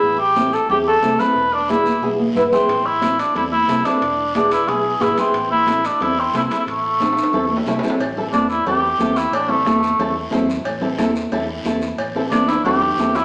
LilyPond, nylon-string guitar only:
\new Staff \with { instrumentName = "Nylon-string guitar" } { \time 4/4 \key a \minor \tempo 4 = 181 r4 <c' e' a'>8 r8 <c' e' gis'>8 r8 <c' e' a'>8 <c' e' a'>8 | r4 <b e' gis'>8 r8 <b e' gis'>8 r8 <b e' b'>8 <b e' gis'>8 | r4 <c' e' a'>8 r8 <c' e' a'>8 r8 <c' e' a'>8 <c' e' a'>8 | r4 <b e' gis'>8 r8 <b e' gis'>8 r8 <b e' gis'>8 <b e' gis'>8 |
r4 <c' e' a'>8 r8 <c' e' a'>8 r8 <c' e' a'>8 <c' e' a'>8 | r4 <c' e' a'>8 r8 <c' e' a'>8 r8 <c' e' a'>8 <c' e' a'>8 | r8 <c' e' a'>8 <c' e' a'>8 r8 <c' e' a'>8 r8 <c' e' a'>8 r8 | r8 <c' e' a'>8 <c' e' a'>8 r8 <c' e' a'>8 r8 <c' e' a'>8 r8 |
r8 <c' e' a'>8 <c' e' a'>8 r8 <c' e' a'>8 r8 <c' e' a'>8 r8 | r8 <c' e' a'>8 <c' e' a'>8 r8 <c' e' a'>8 r8 <c' e' a'>8 r8 | }